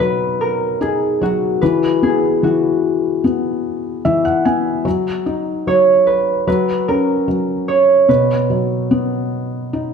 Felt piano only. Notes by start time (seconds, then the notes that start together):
Already playing: B2 D#4
0.00 F#3
0.81 D#4
1.21 F#3
1.63 E3
2.03 B3
2.43 E3
3.24 B3
4.05 E3 E5
4.25 F#5
4.45 B3 G#5
4.85 F#3
5.26 D#4
5.67 F#3
6.47 F#3
6.89 C#4
7.28 F#3
8.09 B2
8.50 F#3
8.91 B3
9.73 D#4